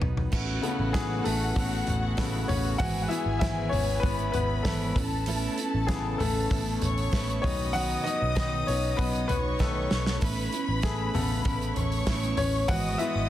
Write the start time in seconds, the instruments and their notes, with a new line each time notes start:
Already playing: grand piano D#3 F#3 B3, analog synth pad F#3 B3 D#4, steel-string acoustic guitar F#3 B3 D#4 B4
0.02 picked electric bass B1, floor tom
0.17 floor tom
0.32 picked electric bass A1, steel-string acoustic guitar A3 C#4 E4 B4, analog synth pad A3 B3 C#4, violin section F#4 F#5, kick, crash
0.62 grand piano C#3 A3 B3, steel-string acoustic guitar C#4 E4 B4, hi-hat pedal, open hi-hat
0.79 picked electric bass A1
0.93 picked electric bass A1, grand piano E3 G#4, steel-string acoustic guitar A3 C#4 E4 B4, kick, snare, hi-hat pedal, open hi-hat
1.24 picked electric bass A1, grand piano A3 A4, steel-string acoustic guitar E4 B4, hi-hat pedal, open hi-hat
1.28 steel-string acoustic guitar C#4
1.56 picked electric bass A1, steel-string acoustic guitar A3 C#4 E4 B4, kick, hi-hat pedal, open hi-hat
1.87 picked electric bass A1, floor tom, hi-hat pedal, open hi-hat
2.17 grand piano C#3 A3 B3, steel-string acoustic guitar A3 C#4 E4 B4, kick, snare, hi-hat pedal, open hi-hat
2.48 picked electric bass A1, grand piano C#4 C#5, steel-string acoustic guitar C#4 E4 B4, floor tom, hi-hat pedal, open hi-hat
2.78 picked electric bass G#1, steel-string acoustic guitar G#2 E3 G#3 B3 E4 B4, analog synth pad B3 E4 B4, grand piano F#4 F#5, violin section G#4 G#5, kick, hi-hat pedal, open hi-hat
3.02 grand piano F#5
3.08 grand piano E3 B3 E4 G#4 E5, steel-string acoustic guitar G#3 B3 E4 B4, hi-hat pedal, open hi-hat
3.26 picked electric bass G#1
3.39 picked electric bass G#1, steel-string acoustic guitar G#2 E3 G#3 B3 E4 B4, grand piano E4 E5, kick, snare, hi-hat pedal, open hi-hat
3.69 picked electric bass G#1, grand piano C#4 C#5, steel-string acoustic guitar E4 B4, floor tom, hi-hat pedal, open hi-hat
3.73 steel-string acoustic guitar G#3 B3
3.89 open hi-hat
4.00 steel-string acoustic guitar G#3, grand piano B3 B4, kick, hi-hat pedal, open hi-hat
4.04 picked electric bass G#1, steel-string acoustic guitar B3 E4 B4, violin section B4 B5
4.19 hi-hat pedal
4.32 picked electric bass G#1, grand piano B3 B4, floor tom, hi-hat pedal, open hi-hat
4.63 picked electric bass G#1, steel-string acoustic guitar G#2 E3 G#3 B3 E4 B4, grand piano A4, kick, snare, hi-hat pedal, open hi-hat
4.96 picked electric bass A1, analog synth pad A3 B3 C#4, steel-string acoustic guitar C#4 E4 B4, violin section A4 A5, kick, floor tom, hi-hat pedal, open hi-hat
5.26 steel-string acoustic guitar A3 C#4 E4 B4, hi-hat pedal, open hi-hat
5.58 steel-string acoustic guitar C#4 E4 B4, hi-hat pedal, open hi-hat
5.74 picked electric bass A1
5.87 grand piano C#3 E3 A3 B3 G#4, steel-string acoustic guitar A3 C#4 E4 B4, kick, snare, hi-hat pedal, open hi-hat
6.18 picked electric bass A1, grand piano A3 A4, steel-string acoustic guitar C#4 E4 B4, floor tom, hi-hat pedal, open hi-hat
6.50 picked electric bass A1, steel-string acoustic guitar A3 C#4 E4 B4, kick, hi-hat pedal, open hi-hat
6.82 picked electric bass A1, violin section C#5 C#6, floor tom, hi-hat pedal, open hi-hat
6.98 open hi-hat
7.12 picked electric bass A1, steel-string acoustic guitar A3 C#4 E4 B4, kick, snare, hi-hat pedal, open hi-hat
7.29 hi-hat pedal
7.42 picked electric bass B1, grand piano D#3 F#3 B3 C#4 C#5, analog synth pad F#3 D#4, steel-string acoustic guitar F#3 B3 D#4 B4, violin section D#5 D#6, kick, floor tom, hi-hat pedal, open hi-hat
7.73 steel-string acoustic guitar B2 D#3 F#3 B3 D#4 B4, grand piano F#4 F#5, hi-hat pedal, open hi-hat
8.04 steel-string acoustic guitar F#3 B3 D#4 B4, grand piano D#4 D#5, hi-hat pedal, open hi-hat
8.22 picked electric bass B1
8.35 picked electric bass B1, steel-string acoustic guitar B2 D#3 F#3 B3 D#4 B4, grand piano D#4 D#5, kick, snare, hi-hat pedal, open hi-hat
8.66 picked electric bass B1, steel-string acoustic guitar F#3 B3 D#4 B4, grand piano C#4 C#5, hi-hat pedal, open hi-hat
8.84 open hi-hat
8.97 picked electric bass B1, steel-string acoustic guitar F#3 B3 D#4 B4, grand piano B3 B4, kick, hi-hat pedal, open hi-hat
9.14 hi-hat pedal
9.28 picked electric bass B1, grand piano B3 B4, violin section C#5 C#6, floor tom, hi-hat pedal, open hi-hat
9.59 picked electric bass B1, steel-string acoustic guitar B2 D#3 F#3 B3 D#4 B4, grand piano A3 A4, kick, snare
9.90 picked electric bass B1, steel-string acoustic guitar F#3 B3 D#4 B4, snare
10.06 snare
10.21 picked electric bass A1, steel-string acoustic guitar A3 C#4 E4 B4, analog synth pad A3 C#4, violin section B4 B5, kick, hi-hat pedal, open hi-hat
10.52 steel-string acoustic guitar C#4 E4 B4, hi-hat pedal, open hi-hat
10.68 picked electric bass A1
10.82 steel-string acoustic guitar A3 C#4 E4 B4, grand piano A3 G#4, kick, snare, hi-hat pedal, open hi-hat
11.13 picked electric bass A1, grand piano C#3 A3 B3 A4, steel-string acoustic guitar C#4 E4 B4, floor tom, hi-hat pedal, open hi-hat
11.30 open hi-hat
11.44 picked electric bass A1, steel-string acoustic guitar A3 C#4 E4 B4, kick, hi-hat pedal, open hi-hat
11.61 hi-hat pedal
11.76 picked electric bass A1, violin section C#5 C#6, floor tom, hi-hat pedal, open hi-hat
11.92 open hi-hat
12.06 picked electric bass A1, steel-string acoustic guitar A3 C#4 E4 B4, kick, snare, hi-hat pedal, open hi-hat
12.22 hi-hat pedal
12.37 picked electric bass A1, grand piano C#4 C#5, steel-string acoustic guitar C#4 E4 B4, floor tom, hi-hat pedal, open hi-hat
12.68 picked electric bass G#1, steel-string acoustic guitar G#2 E3 G#3 B3 E4 B4, analog synth pad B3 E4 B4, grand piano F#4 F#5, violin section D#5 D#6, kick, hi-hat pedal, open hi-hat
12.98 grand piano E3 G#3 B3 E4 E5, steel-string acoustic guitar B3 E4 B4, hi-hat pedal, open hi-hat
13.02 steel-string acoustic guitar G#3
13.15 picked electric bass G#1